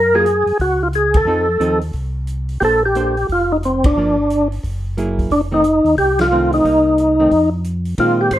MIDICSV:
0, 0, Header, 1, 5, 480
1, 0, Start_track
1, 0, Tempo, 335570
1, 1821, Time_signature, 4, 2, 24, 8
1, 12001, End_track
2, 0, Start_track
2, 0, Title_t, "Tonewheel organ"
2, 0, Program_c, 0, 16
2, 0, Note_on_c, 0, 70, 90
2, 221, Note_off_c, 0, 70, 0
2, 221, Note_on_c, 0, 68, 90
2, 823, Note_off_c, 0, 68, 0
2, 876, Note_on_c, 0, 66, 83
2, 1182, Note_off_c, 0, 66, 0
2, 1188, Note_on_c, 0, 65, 65
2, 1261, Note_off_c, 0, 65, 0
2, 1365, Note_on_c, 0, 68, 74
2, 1666, Note_off_c, 0, 68, 0
2, 1672, Note_on_c, 0, 69, 72
2, 2562, Note_off_c, 0, 69, 0
2, 3725, Note_on_c, 0, 67, 70
2, 3756, Note_off_c, 0, 67, 0
2, 3785, Note_on_c, 0, 69, 92
2, 4049, Note_off_c, 0, 69, 0
2, 4084, Note_on_c, 0, 67, 77
2, 4677, Note_off_c, 0, 67, 0
2, 4752, Note_on_c, 0, 65, 85
2, 5038, Note_on_c, 0, 63, 60
2, 5041, Note_off_c, 0, 65, 0
2, 5110, Note_off_c, 0, 63, 0
2, 5225, Note_on_c, 0, 60, 63
2, 5518, Note_off_c, 0, 60, 0
2, 5520, Note_on_c, 0, 62, 68
2, 6407, Note_off_c, 0, 62, 0
2, 7608, Note_on_c, 0, 62, 89
2, 7740, Note_off_c, 0, 62, 0
2, 7923, Note_on_c, 0, 63, 77
2, 8516, Note_off_c, 0, 63, 0
2, 8556, Note_on_c, 0, 67, 96
2, 8863, Note_off_c, 0, 67, 0
2, 8887, Note_on_c, 0, 65, 99
2, 9315, Note_off_c, 0, 65, 0
2, 9353, Note_on_c, 0, 63, 80
2, 10722, Note_off_c, 0, 63, 0
2, 11442, Note_on_c, 0, 65, 93
2, 11744, Note_off_c, 0, 65, 0
2, 11744, Note_on_c, 0, 67, 88
2, 11914, Note_off_c, 0, 67, 0
2, 11922, Note_on_c, 0, 72, 87
2, 12001, Note_off_c, 0, 72, 0
2, 12001, End_track
3, 0, Start_track
3, 0, Title_t, "Hollow-body jazz guitar"
3, 0, Program_c, 1, 26
3, 205, Note_on_c, 1, 54, 67
3, 210, Note_on_c, 1, 58, 64
3, 213, Note_on_c, 1, 68, 59
3, 215, Note_on_c, 1, 65, 57
3, 361, Note_off_c, 1, 54, 0
3, 364, Note_off_c, 1, 58, 0
3, 366, Note_off_c, 1, 65, 0
3, 366, Note_off_c, 1, 68, 0
3, 1814, Note_on_c, 1, 53, 52
3, 1821, Note_on_c, 1, 60, 54
3, 1823, Note_on_c, 1, 63, 54
3, 1834, Note_on_c, 1, 69, 59
3, 2092, Note_off_c, 1, 53, 0
3, 2096, Note_off_c, 1, 60, 0
3, 2097, Note_off_c, 1, 63, 0
3, 2102, Note_off_c, 1, 69, 0
3, 2287, Note_on_c, 1, 53, 59
3, 2292, Note_on_c, 1, 60, 57
3, 2299, Note_on_c, 1, 63, 66
3, 2309, Note_on_c, 1, 69, 56
3, 2569, Note_off_c, 1, 53, 0
3, 2571, Note_off_c, 1, 60, 0
3, 2575, Note_off_c, 1, 63, 0
3, 2580, Note_off_c, 1, 69, 0
3, 3743, Note_on_c, 1, 58, 47
3, 3752, Note_on_c, 1, 62, 37
3, 3757, Note_on_c, 1, 69, 43
3, 3762, Note_on_c, 1, 72, 46
3, 4018, Note_off_c, 1, 58, 0
3, 4022, Note_off_c, 1, 62, 0
3, 4025, Note_off_c, 1, 69, 0
3, 4027, Note_off_c, 1, 72, 0
3, 4228, Note_on_c, 1, 58, 46
3, 4236, Note_on_c, 1, 62, 48
3, 4246, Note_on_c, 1, 72, 53
3, 4249, Note_on_c, 1, 69, 49
3, 4500, Note_off_c, 1, 58, 0
3, 4504, Note_off_c, 1, 62, 0
3, 4509, Note_off_c, 1, 72, 0
3, 4510, Note_off_c, 1, 69, 0
3, 5675, Note_on_c, 1, 53, 50
3, 5694, Note_on_c, 1, 58, 47
3, 5702, Note_on_c, 1, 62, 57
3, 5944, Note_off_c, 1, 53, 0
3, 5953, Note_off_c, 1, 58, 0
3, 5957, Note_off_c, 1, 62, 0
3, 7114, Note_on_c, 1, 54, 51
3, 7118, Note_on_c, 1, 58, 54
3, 7130, Note_on_c, 1, 64, 55
3, 7135, Note_on_c, 1, 68, 51
3, 7589, Note_off_c, 1, 54, 0
3, 7591, Note_off_c, 1, 58, 0
3, 7597, Note_off_c, 1, 64, 0
3, 7599, Note_off_c, 1, 68, 0
3, 7888, Note_on_c, 1, 51, 49
3, 7897, Note_on_c, 1, 57, 52
3, 7900, Note_on_c, 1, 60, 55
3, 8046, Note_off_c, 1, 51, 0
3, 8050, Note_off_c, 1, 57, 0
3, 8052, Note_off_c, 1, 60, 0
3, 9025, Note_on_c, 1, 51, 51
3, 9040, Note_on_c, 1, 57, 65
3, 9048, Note_on_c, 1, 60, 68
3, 9499, Note_off_c, 1, 51, 0
3, 9505, Note_on_c, 1, 55, 47
3, 9506, Note_off_c, 1, 57, 0
3, 9511, Note_off_c, 1, 60, 0
3, 9512, Note_on_c, 1, 58, 50
3, 9517, Note_on_c, 1, 63, 43
3, 10227, Note_off_c, 1, 55, 0
3, 10230, Note_off_c, 1, 58, 0
3, 10233, Note_off_c, 1, 63, 0
3, 10295, Note_on_c, 1, 51, 52
3, 10296, Note_on_c, 1, 57, 52
3, 10308, Note_on_c, 1, 60, 52
3, 10448, Note_off_c, 1, 51, 0
3, 10449, Note_off_c, 1, 57, 0
3, 10455, Note_off_c, 1, 60, 0
3, 11413, Note_on_c, 1, 51, 48
3, 11424, Note_on_c, 1, 56, 59
3, 11432, Note_on_c, 1, 60, 61
3, 12001, Note_off_c, 1, 51, 0
3, 12001, Note_off_c, 1, 56, 0
3, 12001, Note_off_c, 1, 60, 0
3, 12001, End_track
4, 0, Start_track
4, 0, Title_t, "Tonewheel organ"
4, 0, Program_c, 2, 16
4, 0, Note_on_c, 2, 42, 61
4, 625, Note_off_c, 2, 42, 0
4, 658, Note_on_c, 2, 42, 31
4, 752, Note_off_c, 2, 42, 0
4, 848, Note_on_c, 2, 37, 82
4, 1767, Note_off_c, 2, 37, 0
4, 1790, Note_on_c, 2, 41, 67
4, 2251, Note_off_c, 2, 41, 0
4, 2281, Note_on_c, 2, 39, 54
4, 2737, Note_off_c, 2, 39, 0
4, 2773, Note_on_c, 2, 36, 81
4, 3690, Note_off_c, 2, 36, 0
4, 3737, Note_on_c, 2, 34, 68
4, 4652, Note_off_c, 2, 34, 0
4, 4701, Note_on_c, 2, 29, 80
4, 5614, Note_off_c, 2, 29, 0
4, 5658, Note_on_c, 2, 31, 68
4, 6573, Note_off_c, 2, 31, 0
4, 6631, Note_on_c, 2, 30, 80
4, 7539, Note_off_c, 2, 30, 0
4, 7586, Note_on_c, 2, 29, 75
4, 8315, Note_off_c, 2, 29, 0
4, 8362, Note_on_c, 2, 39, 61
4, 8528, Note_off_c, 2, 39, 0
4, 8538, Note_on_c, 2, 36, 88
4, 9452, Note_off_c, 2, 36, 0
4, 9500, Note_on_c, 2, 36, 65
4, 10412, Note_off_c, 2, 36, 0
4, 10457, Note_on_c, 2, 41, 78
4, 11370, Note_off_c, 2, 41, 0
4, 11414, Note_on_c, 2, 46, 72
4, 11881, Note_off_c, 2, 46, 0
4, 11884, Note_on_c, 2, 44, 73
4, 12001, Note_off_c, 2, 44, 0
4, 12001, End_track
5, 0, Start_track
5, 0, Title_t, "Drums"
5, 369, Note_on_c, 9, 42, 43
5, 512, Note_off_c, 9, 42, 0
5, 673, Note_on_c, 9, 46, 31
5, 816, Note_off_c, 9, 46, 0
5, 853, Note_on_c, 9, 46, 35
5, 855, Note_on_c, 9, 36, 30
5, 996, Note_off_c, 9, 46, 0
5, 998, Note_off_c, 9, 36, 0
5, 1330, Note_on_c, 9, 42, 40
5, 1473, Note_off_c, 9, 42, 0
5, 1630, Note_on_c, 9, 51, 66
5, 1641, Note_on_c, 9, 36, 70
5, 1773, Note_off_c, 9, 51, 0
5, 1784, Note_off_c, 9, 36, 0
5, 2298, Note_on_c, 9, 42, 37
5, 2441, Note_off_c, 9, 42, 0
5, 2592, Note_on_c, 9, 46, 32
5, 2735, Note_off_c, 9, 46, 0
5, 2761, Note_on_c, 9, 46, 31
5, 2775, Note_on_c, 9, 36, 26
5, 2904, Note_off_c, 9, 46, 0
5, 2918, Note_off_c, 9, 36, 0
5, 3246, Note_on_c, 9, 42, 36
5, 3389, Note_off_c, 9, 42, 0
5, 3556, Note_on_c, 9, 46, 31
5, 3699, Note_off_c, 9, 46, 0
5, 3743, Note_on_c, 9, 46, 40
5, 3745, Note_on_c, 9, 36, 29
5, 3886, Note_off_c, 9, 46, 0
5, 3888, Note_off_c, 9, 36, 0
5, 4220, Note_on_c, 9, 42, 41
5, 4363, Note_off_c, 9, 42, 0
5, 4534, Note_on_c, 9, 46, 29
5, 4677, Note_off_c, 9, 46, 0
5, 4709, Note_on_c, 9, 46, 37
5, 4710, Note_on_c, 9, 36, 28
5, 4852, Note_off_c, 9, 46, 0
5, 4853, Note_off_c, 9, 36, 0
5, 5190, Note_on_c, 9, 42, 40
5, 5333, Note_off_c, 9, 42, 0
5, 5493, Note_on_c, 9, 51, 69
5, 5499, Note_on_c, 9, 36, 73
5, 5636, Note_off_c, 9, 51, 0
5, 5642, Note_off_c, 9, 36, 0
5, 6153, Note_on_c, 9, 42, 43
5, 6296, Note_off_c, 9, 42, 0
5, 6464, Note_on_c, 9, 46, 32
5, 6607, Note_off_c, 9, 46, 0
5, 6634, Note_on_c, 9, 36, 28
5, 6637, Note_on_c, 9, 46, 37
5, 6778, Note_off_c, 9, 36, 0
5, 6780, Note_off_c, 9, 46, 0
5, 7116, Note_on_c, 9, 42, 38
5, 7259, Note_off_c, 9, 42, 0
5, 7419, Note_on_c, 9, 36, 44
5, 7422, Note_on_c, 9, 46, 34
5, 7562, Note_off_c, 9, 36, 0
5, 7565, Note_off_c, 9, 46, 0
5, 7592, Note_on_c, 9, 36, 30
5, 7595, Note_on_c, 9, 46, 43
5, 7735, Note_off_c, 9, 36, 0
5, 7738, Note_off_c, 9, 46, 0
5, 8064, Note_on_c, 9, 42, 42
5, 8208, Note_off_c, 9, 42, 0
5, 8374, Note_on_c, 9, 46, 30
5, 8517, Note_off_c, 9, 46, 0
5, 8546, Note_on_c, 9, 36, 29
5, 8548, Note_on_c, 9, 46, 41
5, 8689, Note_off_c, 9, 36, 0
5, 8691, Note_off_c, 9, 46, 0
5, 8851, Note_on_c, 9, 51, 54
5, 8857, Note_on_c, 9, 38, 60
5, 8995, Note_off_c, 9, 51, 0
5, 9000, Note_off_c, 9, 38, 0
5, 9332, Note_on_c, 9, 46, 34
5, 9475, Note_off_c, 9, 46, 0
5, 9508, Note_on_c, 9, 36, 29
5, 9515, Note_on_c, 9, 46, 43
5, 9651, Note_off_c, 9, 36, 0
5, 9658, Note_off_c, 9, 46, 0
5, 9982, Note_on_c, 9, 42, 42
5, 10125, Note_off_c, 9, 42, 0
5, 10460, Note_on_c, 9, 46, 35
5, 10463, Note_on_c, 9, 36, 28
5, 10603, Note_off_c, 9, 46, 0
5, 10606, Note_off_c, 9, 36, 0
5, 10933, Note_on_c, 9, 42, 39
5, 11076, Note_off_c, 9, 42, 0
5, 11230, Note_on_c, 9, 46, 36
5, 11373, Note_off_c, 9, 46, 0
5, 11412, Note_on_c, 9, 51, 54
5, 11415, Note_on_c, 9, 36, 26
5, 11555, Note_off_c, 9, 51, 0
5, 11559, Note_off_c, 9, 36, 0
5, 11883, Note_on_c, 9, 44, 45
5, 11883, Note_on_c, 9, 51, 51
5, 11891, Note_on_c, 9, 36, 17
5, 12001, Note_off_c, 9, 36, 0
5, 12001, Note_off_c, 9, 44, 0
5, 12001, Note_off_c, 9, 51, 0
5, 12001, End_track
0, 0, End_of_file